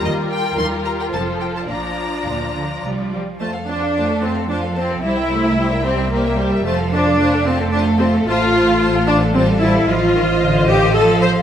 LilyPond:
<<
  \new Staff \with { instrumentName = "Violin section" } { \time 3/4 \key bes \major \tempo 4 = 111 ees''8 g''8 c'''8 bes''16 g''16 a''8 g''16 a''16 | bes''2 r4 | \key f \major a''16 f''16 a''16 f''16 a''16 f''16 a''16 f''16 a''16 f''16 a''16 f''16 | e''16 g''16 e''16 g''16 e''16 g''16 e''16 g''16 e''16 g''16 e''16 g''16 |
a''16 f''16 a''16 f''16 a''16 f''16 a''16 f''16 a''16 f''16 a''16 f''16 | a''16 f''16 a''16 f''16 a''16 f''16 a''16 f''16 a''16 f''16 a''16 f''16 | \key f \mixolydian f''2. | }
  \new Staff \with { instrumentName = "Violin section" } { \time 3/4 \key bes \major << { bes'4 g'4 c''4 | d''2~ d''8 r8 | \key f \major <f' c''>16 a'16 <f' c''>16 a'16 <f' c''>16 a'16 <f' c''>16 a'16 <f' c''>16 a'16 <f' c''>16 a'16 | <g' c''>16 <bes' e''>16 <g' c''>16 <bes' e''>16 <g' c''>16 <bes' e''>16 <g' c''>16 <bes' e''>16 <g' c''>16 <bes' e''>16 <g' c''>16 <bes' e''>16 |
<f' c''>16 a'16 <f' c''>16 a'16 <f' c''>16 a'16 <f' c''>16 a'16 <f' c''>16 a'16 <f' c''>16 a'16 | <f' c''>16 a'16 <f' c''>16 a'16 <f' c''>16 a'16 <f' c''>16 a'16 <f' c''>16 a'16 <f' c''>16 a'16 | \key f \mixolydian <c'' ees''>2. | } \\ { bes'2 a'4 | f'2~ f'8 r8 | r2. | r2. |
r2. | r2. | r2. | } >> }
  \new Staff \with { instrumentName = "Viola section" } { \time 3/4 \key bes \major << { f'2. | d'2~ d'8 g8 | \key f \major a8 d'4 c'8 d'8 c'8 | e'4. c'8 bes8 g8 |
a8 d'4 c'8 d'8 c'8 | f'4. d'8 c'8 e'8 | \key f \mixolydian f'4. g'8 a'8 c''8 | } \\ { g4 g4 f4 | f2~ f8 r8 | r2. | r2. |
r2. | r2. | r2. | } >> }
  \new Staff \with { instrumentName = "Cello section" } { \clef bass \time 3/4 \key bes \major ees,4 ees4 f,4 | bes,4 bes,8 d8 g8 f8 | \key f \major r4 a4 f4 | g8 a8 g2 |
f4 a2~ | a2 g4 | \key f \mixolydian f8 ees8 d8 ees8 f4 | }
  \new Staff \with { instrumentName = "Double bass section" } { \clef bass \time 3/4 \key bes \major ees,4 ees,4 f,,4 | bes,,4 d,4 c,4 | \key f \major f,2. | c,2. |
f,,2. | a,,2. | \key f \mixolydian a,,2. | }
>>